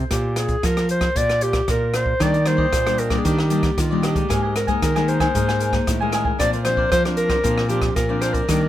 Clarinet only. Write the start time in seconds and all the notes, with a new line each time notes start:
0.11 G4
0.37 G#4
0.65 A#4
0.91 C5
1.17 D5
1.43 G4
1.70 A#4
1.95 C5
2.22 D5
2.47 C5
2.99 A#4
3.18 G#4
3.27 G4
3.79 F4
4.05 G4
4.57 A#4
4.83 A#4
5.09 C5
6.39 D5
6.65 C5
6.91 C5
7.17 A#4
7.69 G4
7.96 A#4
8.22 C5
8.34 A#4